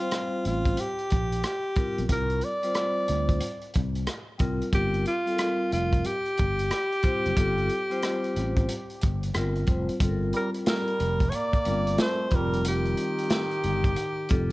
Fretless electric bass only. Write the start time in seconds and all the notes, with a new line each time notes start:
0.45 A1
1.12 A#1
1.98 B1
2.09 C2
3.09 D2
3.76 C2
4.40 C2
4.73 G1
5.72 F1
6.40 G1
7.26 F#1
7.37 G1
8.36 A1
9.04 G1
9.35 G1
9.68 F1
10.01 G1
11.00 F1
11.66 G1
12.32 F1
13.64 G1
14.31 F1